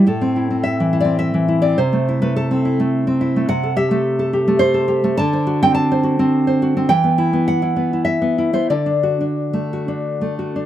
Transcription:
\new Staff \with { instrumentName = "Nylon-string guitar" } { \time 3/4 \key a \minor \tempo 4 = 104 << { a'4 \tuplet 3/2 { e''4 d''8 } e''8. d''16 | c''8. b'16 a'2 | \key d \mixolydian fis''8 e''4. c''4 | a''8. g''16 a''2 |
g''4 fis''4 e''8. c''16 | d''2~ d''8 r8 | } \\ { a,16 c'16 e'16 c'8 e16 e'16 c'8 e16 e'16 c'16 | c16 a16 e'16 a8 c'16 e'16 a8 c'16 e'16 a16 | c16 a'16 g'16 a8 a'16 g'16 a8 a'16 g'16 a16 | d16 c''16 fis'16 c'8 c''16 fis'16 c'8 c''16 fis'16 c'16 |
e16 b16 e'16 b8 e'16 b16 e'8 b16 e'16 b16 | d16 d'16 fis'16 d'8 a16 fis'16 d'8 a16 fis'16 d'16 | } >> }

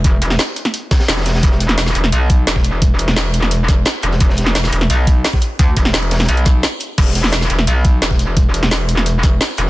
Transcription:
<<
  \new Staff \with { instrumentName = "Wobble bass" } { \clef bass \time 4/4 \key c \lydian \tempo 4 = 173 e,,8 e,,8 r2 e,,4 | e,,4. e,,8 b,,4 e,,4~ | e,,2. r8 e,,8 | e,,4. e,,8 b,,4 r4 |
d,8 e,,8 e,,4 b,,4 r4 | e,,4. e,,8 b,,4 e,,4~ | e,,2. r8 e,,8 | }
  \new DrumStaff \with { instrumentName = "Drums" } \drummode { \time 4/4 <hh bd>8 hh16 sn16 <hh sn>8 hh16 <hh sn>16 hh8 <hh hho bd sn>16 <hho sn>16 <hh sn>16 <hho sn>16 <hh hho sn>16 <hho sn>16 | <hh bd>16 sn16 <hh sn>16 sn16 <hh hho sn>16 sn16 hh16 sn16 hh8 <hh bd>8 <hh sn>16 <bd sn>16 hh8 | <hh bd>8 hh16 sn16 <hh sn>8 hh16 sn16 hh8 <hh bd sn>8 <hh sn>16 hh16 hh16 sn16 | <hh bd>16 sn16 <hh sn>16 sn16 <hh hho sn>16 sn16 hh16 sn16 hh8 <hh bd>8 <hh sn>16 <bd sn>16 hh8 |
<hh bd>8 <hh bd>16 sn16 <hh sn>16 hh16 <hh hho sn>16 <hh hho sn>32 <hho sn>32 hh16 hh16 <hh bd sn>8 <hh sn>8 hh8 | <cymc hh bd>16 sn16 <hh sn>16 sn16 <hh hho sn>16 sn16 hh16 sn16 hh8 <hh bd>8 <hh sn>16 <bd sn>16 hh8 | <hh bd>8 hh16 sn16 <hh sn>8 hh16 sn16 hh8 <hh bd sn>8 <hh sn>16 hh16 hh8 | }
>>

